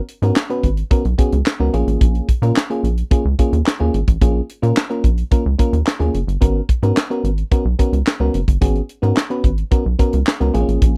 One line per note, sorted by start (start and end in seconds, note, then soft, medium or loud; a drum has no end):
0.08 closed hi-hat medium
0.22 0.32 G#2 loud
0.22 0.36 B3 medium
0.22 0.36 C#4 medium
0.22 0.36 F#4 medium
0.22 0.36 A#4 medium
0.22 closed hi-hat soft
0.36 snare loud
0.36 clap medium
0.50 0.69 B3 medium
0.50 0.69 C#4 medium
0.50 0.69 F#4 medium
0.50 0.70 B4 medium
0.50 closed hi-hat soft
0.63 0.83 G#1 medium
0.63 kick medium
0.63 closed hi-hat medium
0.77 closed hi-hat medium
0.91 1.04 B3 medium
0.91 1.04 C#4 medium
0.91 1.04 F#4 medium
0.91 1.04 A#4 medium
0.91 kick loud
0.91 closed hi-hat medium
1.05 1.15 B1 medium
1.05 closed hi-hat soft
1.18 1.38 B3 medium
1.18 1.38 C#4 medium
1.18 1.38 F#4 medium
1.18 1.38 G#4 medium
1.18 kick medium
1.18 closed hi-hat medium
1.32 1.42 C#2 medium
1.32 closed hi-hat soft
1.46 snare loud
1.46 clap medium
1.60 1.70 C#2 medium
1.60 1.74 B3 medium
1.60 1.72 C#4 medium
1.60 1.74 F#4 medium
1.60 1.74 A#4 medium
1.74 1.83 A#1 medium
1.74 2.29 A#3 medium
1.74 2.29 C#4 medium
1.74 2.29 F4 medium
1.74 2.29 G#4 medium
1.74 closed hi-hat medium
1.87 1.97 A1 medium
1.87 closed hi-hat medium
2.01 2.21 A#1 loud
2.01 kick medium
2.01 closed hi-hat medium
2.15 closed hi-hat soft
2.29 kick medium
2.29 closed hi-hat medium
2.42 2.52 A#2 loud
2.42 2.55 A#3 medium
2.42 2.56 C#4 medium
2.42 2.56 F4 medium
2.42 2.56 A#4 medium
2.42 closed hi-hat soft
2.56 snare loud
2.56 clap medium
2.70 2.90 A#3 medium
2.70 2.90 C#4 medium
2.70 2.90 F4 medium
2.70 2.90 G#4 medium
2.70 closed hi-hat soft
2.83 3.03 A#1 medium
2.83 closed hi-hat medium
2.97 closed hi-hat soft
3.11 3.24 A#3 medium
3.11 3.24 C#4 medium
3.11 3.24 F4 medium
3.11 3.25 G#4 medium
3.11 kick loud
3.11 closed hi-hat medium
3.25 3.35 C#2 medium
3.39 3.58 A#3 medium
3.39 3.58 C#4 medium
3.39 3.59 F4 medium
3.39 3.59 G#4 medium
3.39 kick medium
3.39 closed hi-hat medium
3.53 3.62 D#2 medium
3.53 closed hi-hat soft
3.66 snare loud
3.66 clap medium
3.80 3.90 D#2 medium
3.80 3.99 A#3 medium
3.80 3.99 C#4 medium
3.80 4.00 F4 medium
3.80 4.00 G#4 medium
3.94 4.04 G#1 medium
3.94 closed hi-hat medium
4.08 4.18 A1 medium
4.08 kick medium
4.08 closed hi-hat medium
4.21 4.41 A#1 loud
4.21 4.41 A#3 medium
4.21 4.41 C#4 medium
4.21 4.41 F4 medium
4.21 4.41 G#4 medium
4.21 kick loud
4.21 closed hi-hat medium
4.49 closed hi-hat medium
4.62 4.73 A#2 loud
4.62 4.75 A#3 medium
4.62 4.76 C#4 medium
4.62 4.76 F4 medium
4.62 4.76 A#4 medium
4.62 closed hi-hat soft
4.77 snare loud
4.77 clap medium
4.90 5.09 A#3 medium
4.90 5.09 C#4 medium
4.90 5.10 F4 medium
4.90 5.10 A#4 medium
4.90 closed hi-hat soft
5.04 5.23 A#1 medium
5.04 kick medium
5.04 closed hi-hat medium
5.18 closed hi-hat soft
5.31 5.44 A#3 medium
5.31 5.45 C#4 medium
5.31 5.45 F4 medium
5.31 5.45 A#4 medium
5.31 kick loud
5.31 closed hi-hat medium
5.46 5.55 C#2 medium
5.59 5.78 A#3 medium
5.59 5.78 C#4 medium
5.59 5.79 F4 medium
5.59 5.79 A#4 medium
5.59 kick medium
5.59 closed hi-hat medium
5.73 5.83 D#2 medium
5.73 closed hi-hat soft
5.86 snare loud
5.86 clap medium
5.99 6.10 D#2 loud
5.99 6.19 A#3 medium
5.99 6.19 C#4 medium
5.99 6.20 F4 medium
5.99 6.20 G#4 medium
5.99 closed hi-hat soft
6.14 6.24 F#1 medium
6.14 closed hi-hat medium
6.27 6.37 G1 loud
6.27 closed hi-hat medium
6.41 6.61 G#1 loud
6.41 6.61 B3 medium
6.41 6.61 C#4 medium
6.41 6.61 F#4 medium
6.41 6.61 A#4 medium
6.41 kick medium
6.41 closed hi-hat medium
6.69 kick medium
6.69 closed hi-hat medium
6.83 6.92 G#2 loud
6.83 6.96 B3 medium
6.83 6.96 C#4 medium
6.83 6.96 F#4 medium
6.83 6.96 A#4 medium
6.83 closed hi-hat soft
6.97 snare loud
6.97 clap medium
7.10 7.30 B3 medium
7.10 7.30 C#4 medium
7.10 7.30 F#4 medium
7.10 7.30 A#4 medium
7.10 closed hi-hat soft
7.24 7.43 G#1 medium
7.24 closed hi-hat medium
7.38 closed hi-hat soft
7.51 7.65 B3 medium
7.51 7.65 C#4 medium
7.51 7.65 F#4 medium
7.51 7.65 A#4 medium
7.51 kick loud
7.51 closed hi-hat medium
7.65 7.75 B1 medium
7.79 7.99 B3 medium
7.79 7.99 C#4 medium
7.79 7.99 F#4 medium
7.79 7.99 A#4 medium
7.79 kick medium
7.79 closed hi-hat medium
7.93 8.02 C#2 medium
7.93 closed hi-hat soft
8.06 snare loud
8.06 clap medium
8.20 8.30 C#2 medium
8.20 8.40 B3 medium
8.20 8.40 C#4 medium
8.20 8.40 F#4 medium
8.20 8.40 A#4 medium
8.34 8.44 F#1 medium
8.34 closed hi-hat medium
8.48 8.58 G1 medium
8.48 kick medium
8.48 closed hi-hat medium
8.61 8.81 G#1 loud
8.61 8.81 B3 medium
8.61 8.81 C#4 medium
8.61 8.81 F#4 medium
8.61 8.81 G#4 medium
8.61 kick medium
8.61 closed hi-hat medium
8.75 closed hi-hat soft
8.89 closed hi-hat medium
9.02 9.13 G#2 loud
9.02 9.16 B3 medium
9.02 9.16 C#4 medium
9.02 9.16 F#4 medium
9.02 9.16 A#4 medium
9.02 closed hi-hat soft
9.17 snare loud
9.17 clap medium
9.30 9.50 B3 medium
9.30 9.50 C#4 medium
9.30 9.50 F#4 medium
9.30 9.50 B4 medium
9.30 closed hi-hat soft
9.44 9.64 G#1 medium
9.44 kick medium
9.44 closed hi-hat medium
9.58 closed hi-hat soft
9.71 9.85 B3 medium
9.71 9.85 C#4 medium
9.71 9.85 F#4 medium
9.71 9.85 A#4 medium
9.71 kick loud
9.71 closed hi-hat medium
9.86 9.95 B1 medium
9.99 10.19 B3 medium
9.99 10.19 C#4 medium
9.99 10.19 F#4 medium
9.99 10.19 A#4 medium
9.99 kick medium
9.99 closed hi-hat medium
10.13 10.23 C#2 medium
10.13 closed hi-hat soft
10.27 snare loud
10.27 clap medium
10.40 10.50 C#2 medium
10.40 10.54 B3 medium
10.40 10.54 C#4 medium
10.40 10.54 F#4 medium
10.40 10.55 A#4 medium
10.40 closed hi-hat soft
10.54 10.64 A#1 loud
10.54 10.97 A#3 medium
10.54 10.61 C4 medium
10.54 10.97 F4 medium
10.54 10.97 G#4 loud
10.54 closed hi-hat medium
10.61 10.97 C#4 medium
10.68 10.78 A1 medium
10.68 closed hi-hat medium
10.82 10.97 A#1 loud
10.82 kick medium
10.82 closed hi-hat medium